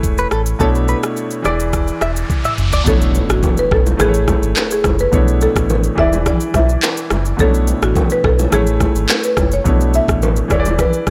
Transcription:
Already playing: grand piano A3 E4 G#4 C#5
0.03 sub bass E1, kick, shaker
0.18 clean electric guitar B4, shaker
0.31 sub bass A1, clean electric guitar A4, cross-stick, shaker
0.46 shaker
0.59 sub bass B1, grand piano B2 A3 D4 E4 C#5, clean electric guitar A4, kick, riser, shaker
0.75 shaker
0.88 clean electric guitar B4, shaker
1.03 cross-stick, shaker
1.17 shaker
1.31 shaker
1.42 sub bass E1, grand piano E3 E4 G#4, clean electric guitar D5, cross-stick, shaker
1.47 grand piano D5
1.60 shaker
1.73 kick, cross-stick, shaker
1.88 shaker
2.01 sub bass E1, clean electric guitar E5, cross-stick, shaker
2.16 shaker
2.30 kick, high tom, shaker
2.44 clean electric guitar E5, mid tom, shaker
2.58 sub bass F#1, mid tom, shaker
2.72 clean electric guitar D5, floor tom, shaker
2.84 sub bass B1, grand piano B2 A3 D4 E4, marimba A4, kick, impact, low conga, shaker
2.89 grand piano C#5
3.01 shaker
3.15 low bongo, shaker
3.29 sub bass A1, marimba F#4, cross-stick, shaker
3.43 kick, high bongo, low conga, shaker
3.57 marimba B4, shaker
3.71 sub bass B1, marimba A4, kick, cross-stick, high bongo
3.86 low bongo, shaker
3.97 sub bass A1, grand piano A3 E4 G#4, marimba G#4, cross-stick, high bongo, low conga, shaker
4.02 grand piano B4
4.09 grand piano C#5
4.14 shaker
4.28 kick, cross-stick, low bongo, shaker
4.42 sub bass G#1, shaker
4.56 clap, high bongo, shaker
4.71 marimba G#4, shaker
4.84 sub bass F#1, kick, cross-stick, low bongo, shaker
4.99 marimba B4, shaker
5.12 sub bass B1, grand piano B2 A3 D4 E4 C#5, kick, low conga, shaker
5.28 shaker
5.41 marimba A4, low bongo, shaker
5.56 sub bass A1, kick, cross-stick, shaker
5.70 high bongo, low conga, shaker
5.84 shaker
5.95 sub bass E1, grand piano E3 E4 G#4, marimba E5, kick, cross-stick, high bongo
6.00 grand piano D5
6.13 low bongo, shaker
6.26 marimba D5, kick, cross-stick, high bongo, low conga, shaker
6.40 shaker
6.54 sub bass B1, marimba E5, kick, cross-stick, low bongo, shaker
6.69 shaker
6.83 clap, high bongo, shaker
6.97 shaker
7.10 sub bass F#1, cross-stick, low bongo, shaker
7.25 shaker
7.37 sub bass B1, grand piano B2 A3 C#4 E4, marimba A4, kick, low conga, shaker
7.42 grand piano C#5
7.46 grand piano D4
7.54 shaker
7.67 low bongo, shaker
7.82 sub bass A1, marimba F#4, cross-stick, shaker
7.96 kick, high bongo, low conga, shaker
8.10 marimba B4, shaker
8.24 sub bass B1, marimba A4, kick, cross-stick, high bongo
8.39 low bongo, shaker
8.50 sub bass A1, grand piano A3 E4 G#4, marimba G#4, cross-stick, high bongo, low conga, shaker
8.55 grand piano C#5
8.67 shaker
8.80 kick, cross-stick, low bongo, shaker
8.95 sub bass G#1, shaker
9.09 clap, high bongo, shaker
9.23 marimba B4, shaker
9.37 sub bass F#1, kick, cross-stick, low bongo, shaker
9.52 marimba C#5, shaker
9.64 sub bass B1, grand piano B2 A3 D4 E4 C#5, kick, low conga, shaker
9.81 shaker
9.94 marimba E5, shaker
10.08 sub bass A1, kick, cross-stick, shaker
10.22 high bongo, low conga, shaker
10.36 shaker
10.48 sub bass E1, grand piano E3 E4 G#4, marimba D5, kick, cross-stick, high bongo, shaker
10.53 grand piano C#5
10.60 grand piano D5
10.65 low bongo, shaker
10.79 marimba B4, kick, cross-stick, high bongo, low conga, shaker
10.93 shaker
11.07 sub bass B1, kick, cross-stick, shaker

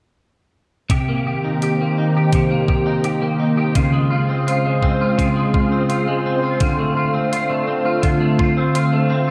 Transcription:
0.89 clean electric guitar C3 G4, analog synth pad D#3 A#3 C4 G4 C5, kick, closed hi-hat
1.08 clean electric guitar A#3
1.27 clean electric guitar G4
1.44 clean electric guitar D#4
1.62 clean electric guitar G4, closed hi-hat
1.81 clean electric guitar A#3
1.98 clean electric guitar D#4
2.17 clean electric guitar G4
2.33 clean electric guitar C3 G4, kick, closed hi-hat
2.51 clean electric guitar A#3
2.68 clean electric guitar G4, kick
2.86 clean electric guitar D#4
3.04 clean electric guitar G4, closed hi-hat
3.22 clean electric guitar A#3
3.40 clean electric guitar D#4
3.57 clean electric guitar G4
3.75 clean electric guitar C#3 F4, analog synth pad C#3 G#3 F4, kick, closed hi-hat
3.92 clean electric guitar G#3
4.10 clean electric guitar F4
4.29 clean electric guitar C4
4.47 clean electric guitar F4, closed hi-hat
4.65 clean electric guitar G#3
4.83 clean electric guitar C4, kick
5.01 clean electric guitar F4
5.18 clean electric guitar C#3 F4, kick, closed hi-hat
5.36 clean electric guitar G#3
5.54 clean electric guitar F4, kick
5.72 clean electric guitar C4
5.89 clean electric guitar F4, closed hi-hat
6.08 clean electric guitar G#3
6.26 clean electric guitar C4
6.43 clean electric guitar F4
6.60 clean electric guitar D3 F4, analog synth pad D3 A3, kick, closed hi-hat
6.79 clean electric guitar A3
6.97 clean electric guitar F4
7.14 clean electric guitar C4
7.32 clean electric guitar F4, closed hi-hat
7.50 clean electric guitar A3
7.67 clean electric guitar C4
7.85 clean electric guitar F4
8.03 clean electric guitar D3 F4, kick, closed hi-hat
8.20 clean electric guitar A3
8.39 clean electric guitar F4, kick
8.57 clean electric guitar C4
8.75 clean electric guitar F4, closed hi-hat
8.93 clean electric guitar A3
9.10 clean electric guitar C4

